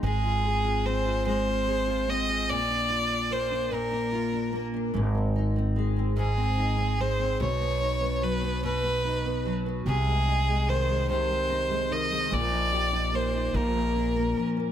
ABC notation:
X:1
M:6/8
L:1/16
Q:3/8=49
K:Ablyd
V:1 name="Violin"
A4 c2 c4 e2 | d4 c2 B4 z2 | z6 A4 c2 | _d4 =B2 B4 z2 |
A4 c2 c4 e2 | d4 c2 B4 z2 |]
V:2 name="Nylon-string guitar"
A, F A F C F A, F A F C F | B,, D F D B, D B,, D F D B, D | A,, C E C A, C A,, C E C A, C | =B,, =B, ^D B, ^F, B, B,, B, D B, F, B, |
C, A, E A, E, A, C, A, E A, E, A, | B,, E G E B, E B,, B, D B, F, B, |]
V:3 name="Upright bass" clef=bass
A,,,12 | B,,,12 | A,,,12 | =B,,,12 |
C,,12 | B,,,6 B,,,4 z2 |]